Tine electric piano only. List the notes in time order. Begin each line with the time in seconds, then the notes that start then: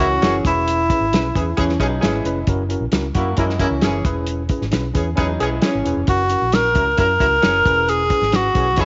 0.00 C#4 E4 F#4 A#4
0.22 C#4 E4 F#4 A#4
0.45 C#4 E4 G#4 B4
0.90 C#4 E4 G#4 B4
1.13 C#4 E4 G#4 B4
1.35 C#4 E4 G#4 B4
1.57 C#4 E4 G#4 B4
1.80 C#4 E4 G#4 B4
2.03 C#4 E4 G#4 B4
2.25 C#4 E4 G#4 B4
2.48 C#4 E4 F#4 A#4
2.69 C#4 E4 F#4 A#4
2.92 C#4 E4 F#4 A#4
3.15 C#4 E4 F#4 A#4
3.37 C#4 E4 F#4 A#4
3.60 C#4 E4 F#4 A#4
3.82 C#4 E4 F#4 A#4
4.05 C#4 E4 G#4 B4
4.49 C#4 E4 G#4 B4
4.71 C#4 E4 G#4 B4
4.94 C#4 E4 G#4 B4
5.15 C#4 E4 G#4 B4
5.39 C#4 E4 G#4 B4
5.62 C#4 E4 G#4 B4
5.85 C#4 E4 G#4 B4
6.07 C#4 E4 F#4 A#4
6.30 C#4 E4 F#4 A#4
6.53 C#4 E4 F#4 A#4
6.75 C#4 E4 F#4 A#4
6.97 C#4 E4 F#4 A#4
7.20 C#4 E4 F#4 A#4
7.42 C#4 E4 F#4 A#4
7.65 C#4 E4 G#4 B4
8.10 C#4 E4 G#4 B4
8.32 C#4 E4 G#4 B4
8.54 C#4 E4 G#4 B4
8.77 C#4 E4 G#4 B4